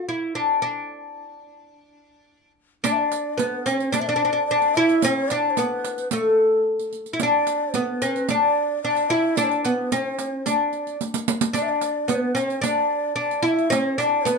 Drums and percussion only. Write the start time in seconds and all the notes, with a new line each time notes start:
2.84 riq
3.12 riq
3.39 riq
3.67 riq
3.80 riq
3.94 riq
4.62 riq
4.75 riq
4.89 riq
5.02 riq
5.30 riq
5.57 riq
5.84 riq
5.98 riq
6.11 riq
6.79 riq
6.93 riq
7.06 riq
7.20 riq
7.47 riq
7.74 riq
8.02 riq
8.16 riq
8.29 riq
8.96 riq
9.10 riq
9.37 riq
9.51 riq
9.65 riq
9.92 riq
10.19 riq
10.46 riq
10.73 riq
10.87 riq
11.01 riq
11.14 riq
11.28 riq
11.41 riq
11.54 riq
11.81 riq
12.09 riq
12.36 riq
12.50 riq
12.63 riq
13.31 riq
13.45 riq
13.59 riq
13.72 riq
14.00 riq
14.26 riq